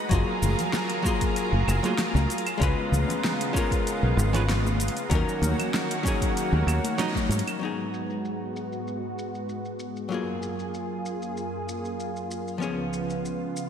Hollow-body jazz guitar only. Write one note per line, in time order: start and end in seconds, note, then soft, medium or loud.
0.09 1.00 F#3 medium
0.09 1.01 A#3 medium
0.09 1.02 F4 medium
0.14 1.03 G#4 loud
1.03 1.79 F#3 medium
1.03 1.80 A#3 medium
1.03 1.81 F4 medium
1.08 1.82 G#4 medium
1.83 1.93 F#3 medium
1.83 1.93 A#3 medium
1.83 1.94 F4 medium
1.83 1.94 G#4 medium
2.58 3.50 G#3 medium
2.58 3.51 C#4 medium
2.58 3.51 F4 medium
2.63 3.52 B4 loud
3.53 4.30 G#3 medium
3.53 4.30 C#4 medium
3.53 4.31 F4 medium
3.58 4.32 A#4 medium
4.33 4.43 G#3 medium
4.33 4.43 C#4 medium
4.33 4.44 F4 medium
4.33 4.44 B4 medium
5.10 6.01 F#3 medium
5.10 6.01 C#4 medium
5.10 6.02 D#4 medium
5.15 6.03 A#4 loud
6.03 6.80 F#3 medium
6.03 6.80 C#4 medium
6.03 6.81 D#4 medium
6.08 6.82 G#4 medium
6.98 7.57 F#3 medium
6.98 7.58 C#4 medium
6.98 7.58 D#4 medium
6.98 7.58 D#5 loud
7.59 10.07 F#3 medium
7.59 10.08 B3 medium
7.59 10.08 D#4 medium
7.65 10.09 G#4 medium
10.09 12.56 F#3 medium
10.09 12.57 A#3 medium
10.09 12.58 F4 medium
10.14 12.59 G#4 medium
12.58 13.69 F3 medium
12.58 13.69 B3 medium
12.58 13.69 C#4 medium
12.63 13.69 G#4 medium